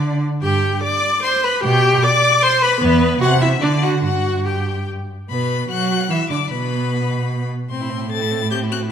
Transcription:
Already playing: cello D3, viola D4, violin D5
0.42 cello G2, viola G4, violin G5
0.83 viola D5, violin D6
1.23 viola C5, violin C6
1.44 viola B4, violin B5
1.63 cello B2, viola G4, violin G5
2.03 viola D5, violin D6
2.42 viola C5, violin C6
2.62 viola B4, violin B5
2.81 cello E2, viola B3, violin B4
3.20 cello C3, viola F#4, violin F#5
3.41 viola E4, violin E5
3.61 cello D3, viola D4, violin D5
3.82 viola F#4, violin F#5
4.02 cello G2, viola F#4, violin F#5
4.45 viola G4, violin G5
5.29 cello B2, viola B3, violin B4 B5
5.69 cello F#3, viola F#4, violin F#5 F#6
6.10 cello E3, viola E4, violin E5 E6
6.30 cello D3, viola D4, violin D5 D6
6.50 cello B2, viola B3, violin B4 B5
7.69 cello A2, viola C4, violin C4 C6
7.81 violin E4
7.90 violin C4
8.00 violin E4
8.10 violin C4 A6, viola A4
8.21 violin E4
8.31 violin C4
8.41 violin E4
8.51 violin C4 G6, viola G4
8.63 violin E4
8.71 violin C4 F#6, viola F#4
8.82 violin E4

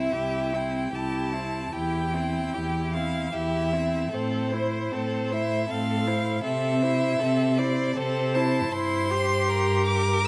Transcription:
Already playing: viola C4, violin E4 E5
0.13 cello C2, viola E4, violin G4
0.53 viola C4, violin E4 G5
0.93 cello C2, viola E4, violin G4 A5
1.33 viola C4, violin E4
1.73 cello E2, viola E4, violin G4 G5
2.14 viola C4, violin E4
2.54 cello E2, viola E4, violin G4
2.94 viola C4, violin E4 F5
3.33 cello E2, viola E4, violin G4 E5
3.73 viola C4, violin E4
4.12 cello A2, viola C4, violin A4 C5
4.51 viola E4, violin C5
4.93 cello A2, viola C4, violin A4
5.31 viola E4, violin C5 E5
5.70 cello A2, viola C4, violin A4 F5
6.07 viola E4, violin C5
6.44 cello C3, viola C4, violin A4 E5
6.83 viola E4, violin C5
7.19 cello C3, viola C4, violin A4
7.58 viola E4, violin C5 D5
7.96 cello C3, viola C4, violin A4 C5
8.35 viola E4, violin C5 A5
8.72 cello G2, viola E4, violin C5 C6
9.11 viola G4
9.49 violin A#4
9.86 violin D6

